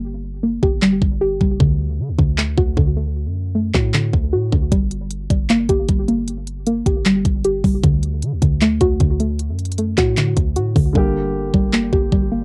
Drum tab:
HH |------------------------|------------------------|------------------------|x--x--x--x--x--x--x--x--|
CP |------------x-----------|------------x-----------|---------x--x-----------|------------x-----------|
BD |---------o-----o-----o--|o--------o-----o--o-----|---------o-----o-----o--|o--------o-----o--o-----|

HH |x--x--x--x--x--x--x--o--|x--x--x--x--x--x--x--x--|x--xxxx--x--x--x--x--o--|------------------------|
CP |------------x-----------|------------x-----------|---------x--x-----------|------------x-----------|
BD |---------o-----o-----o--|o--------o-----o--o-----|---------o-----o-----o--|o--------o-----o--o-----|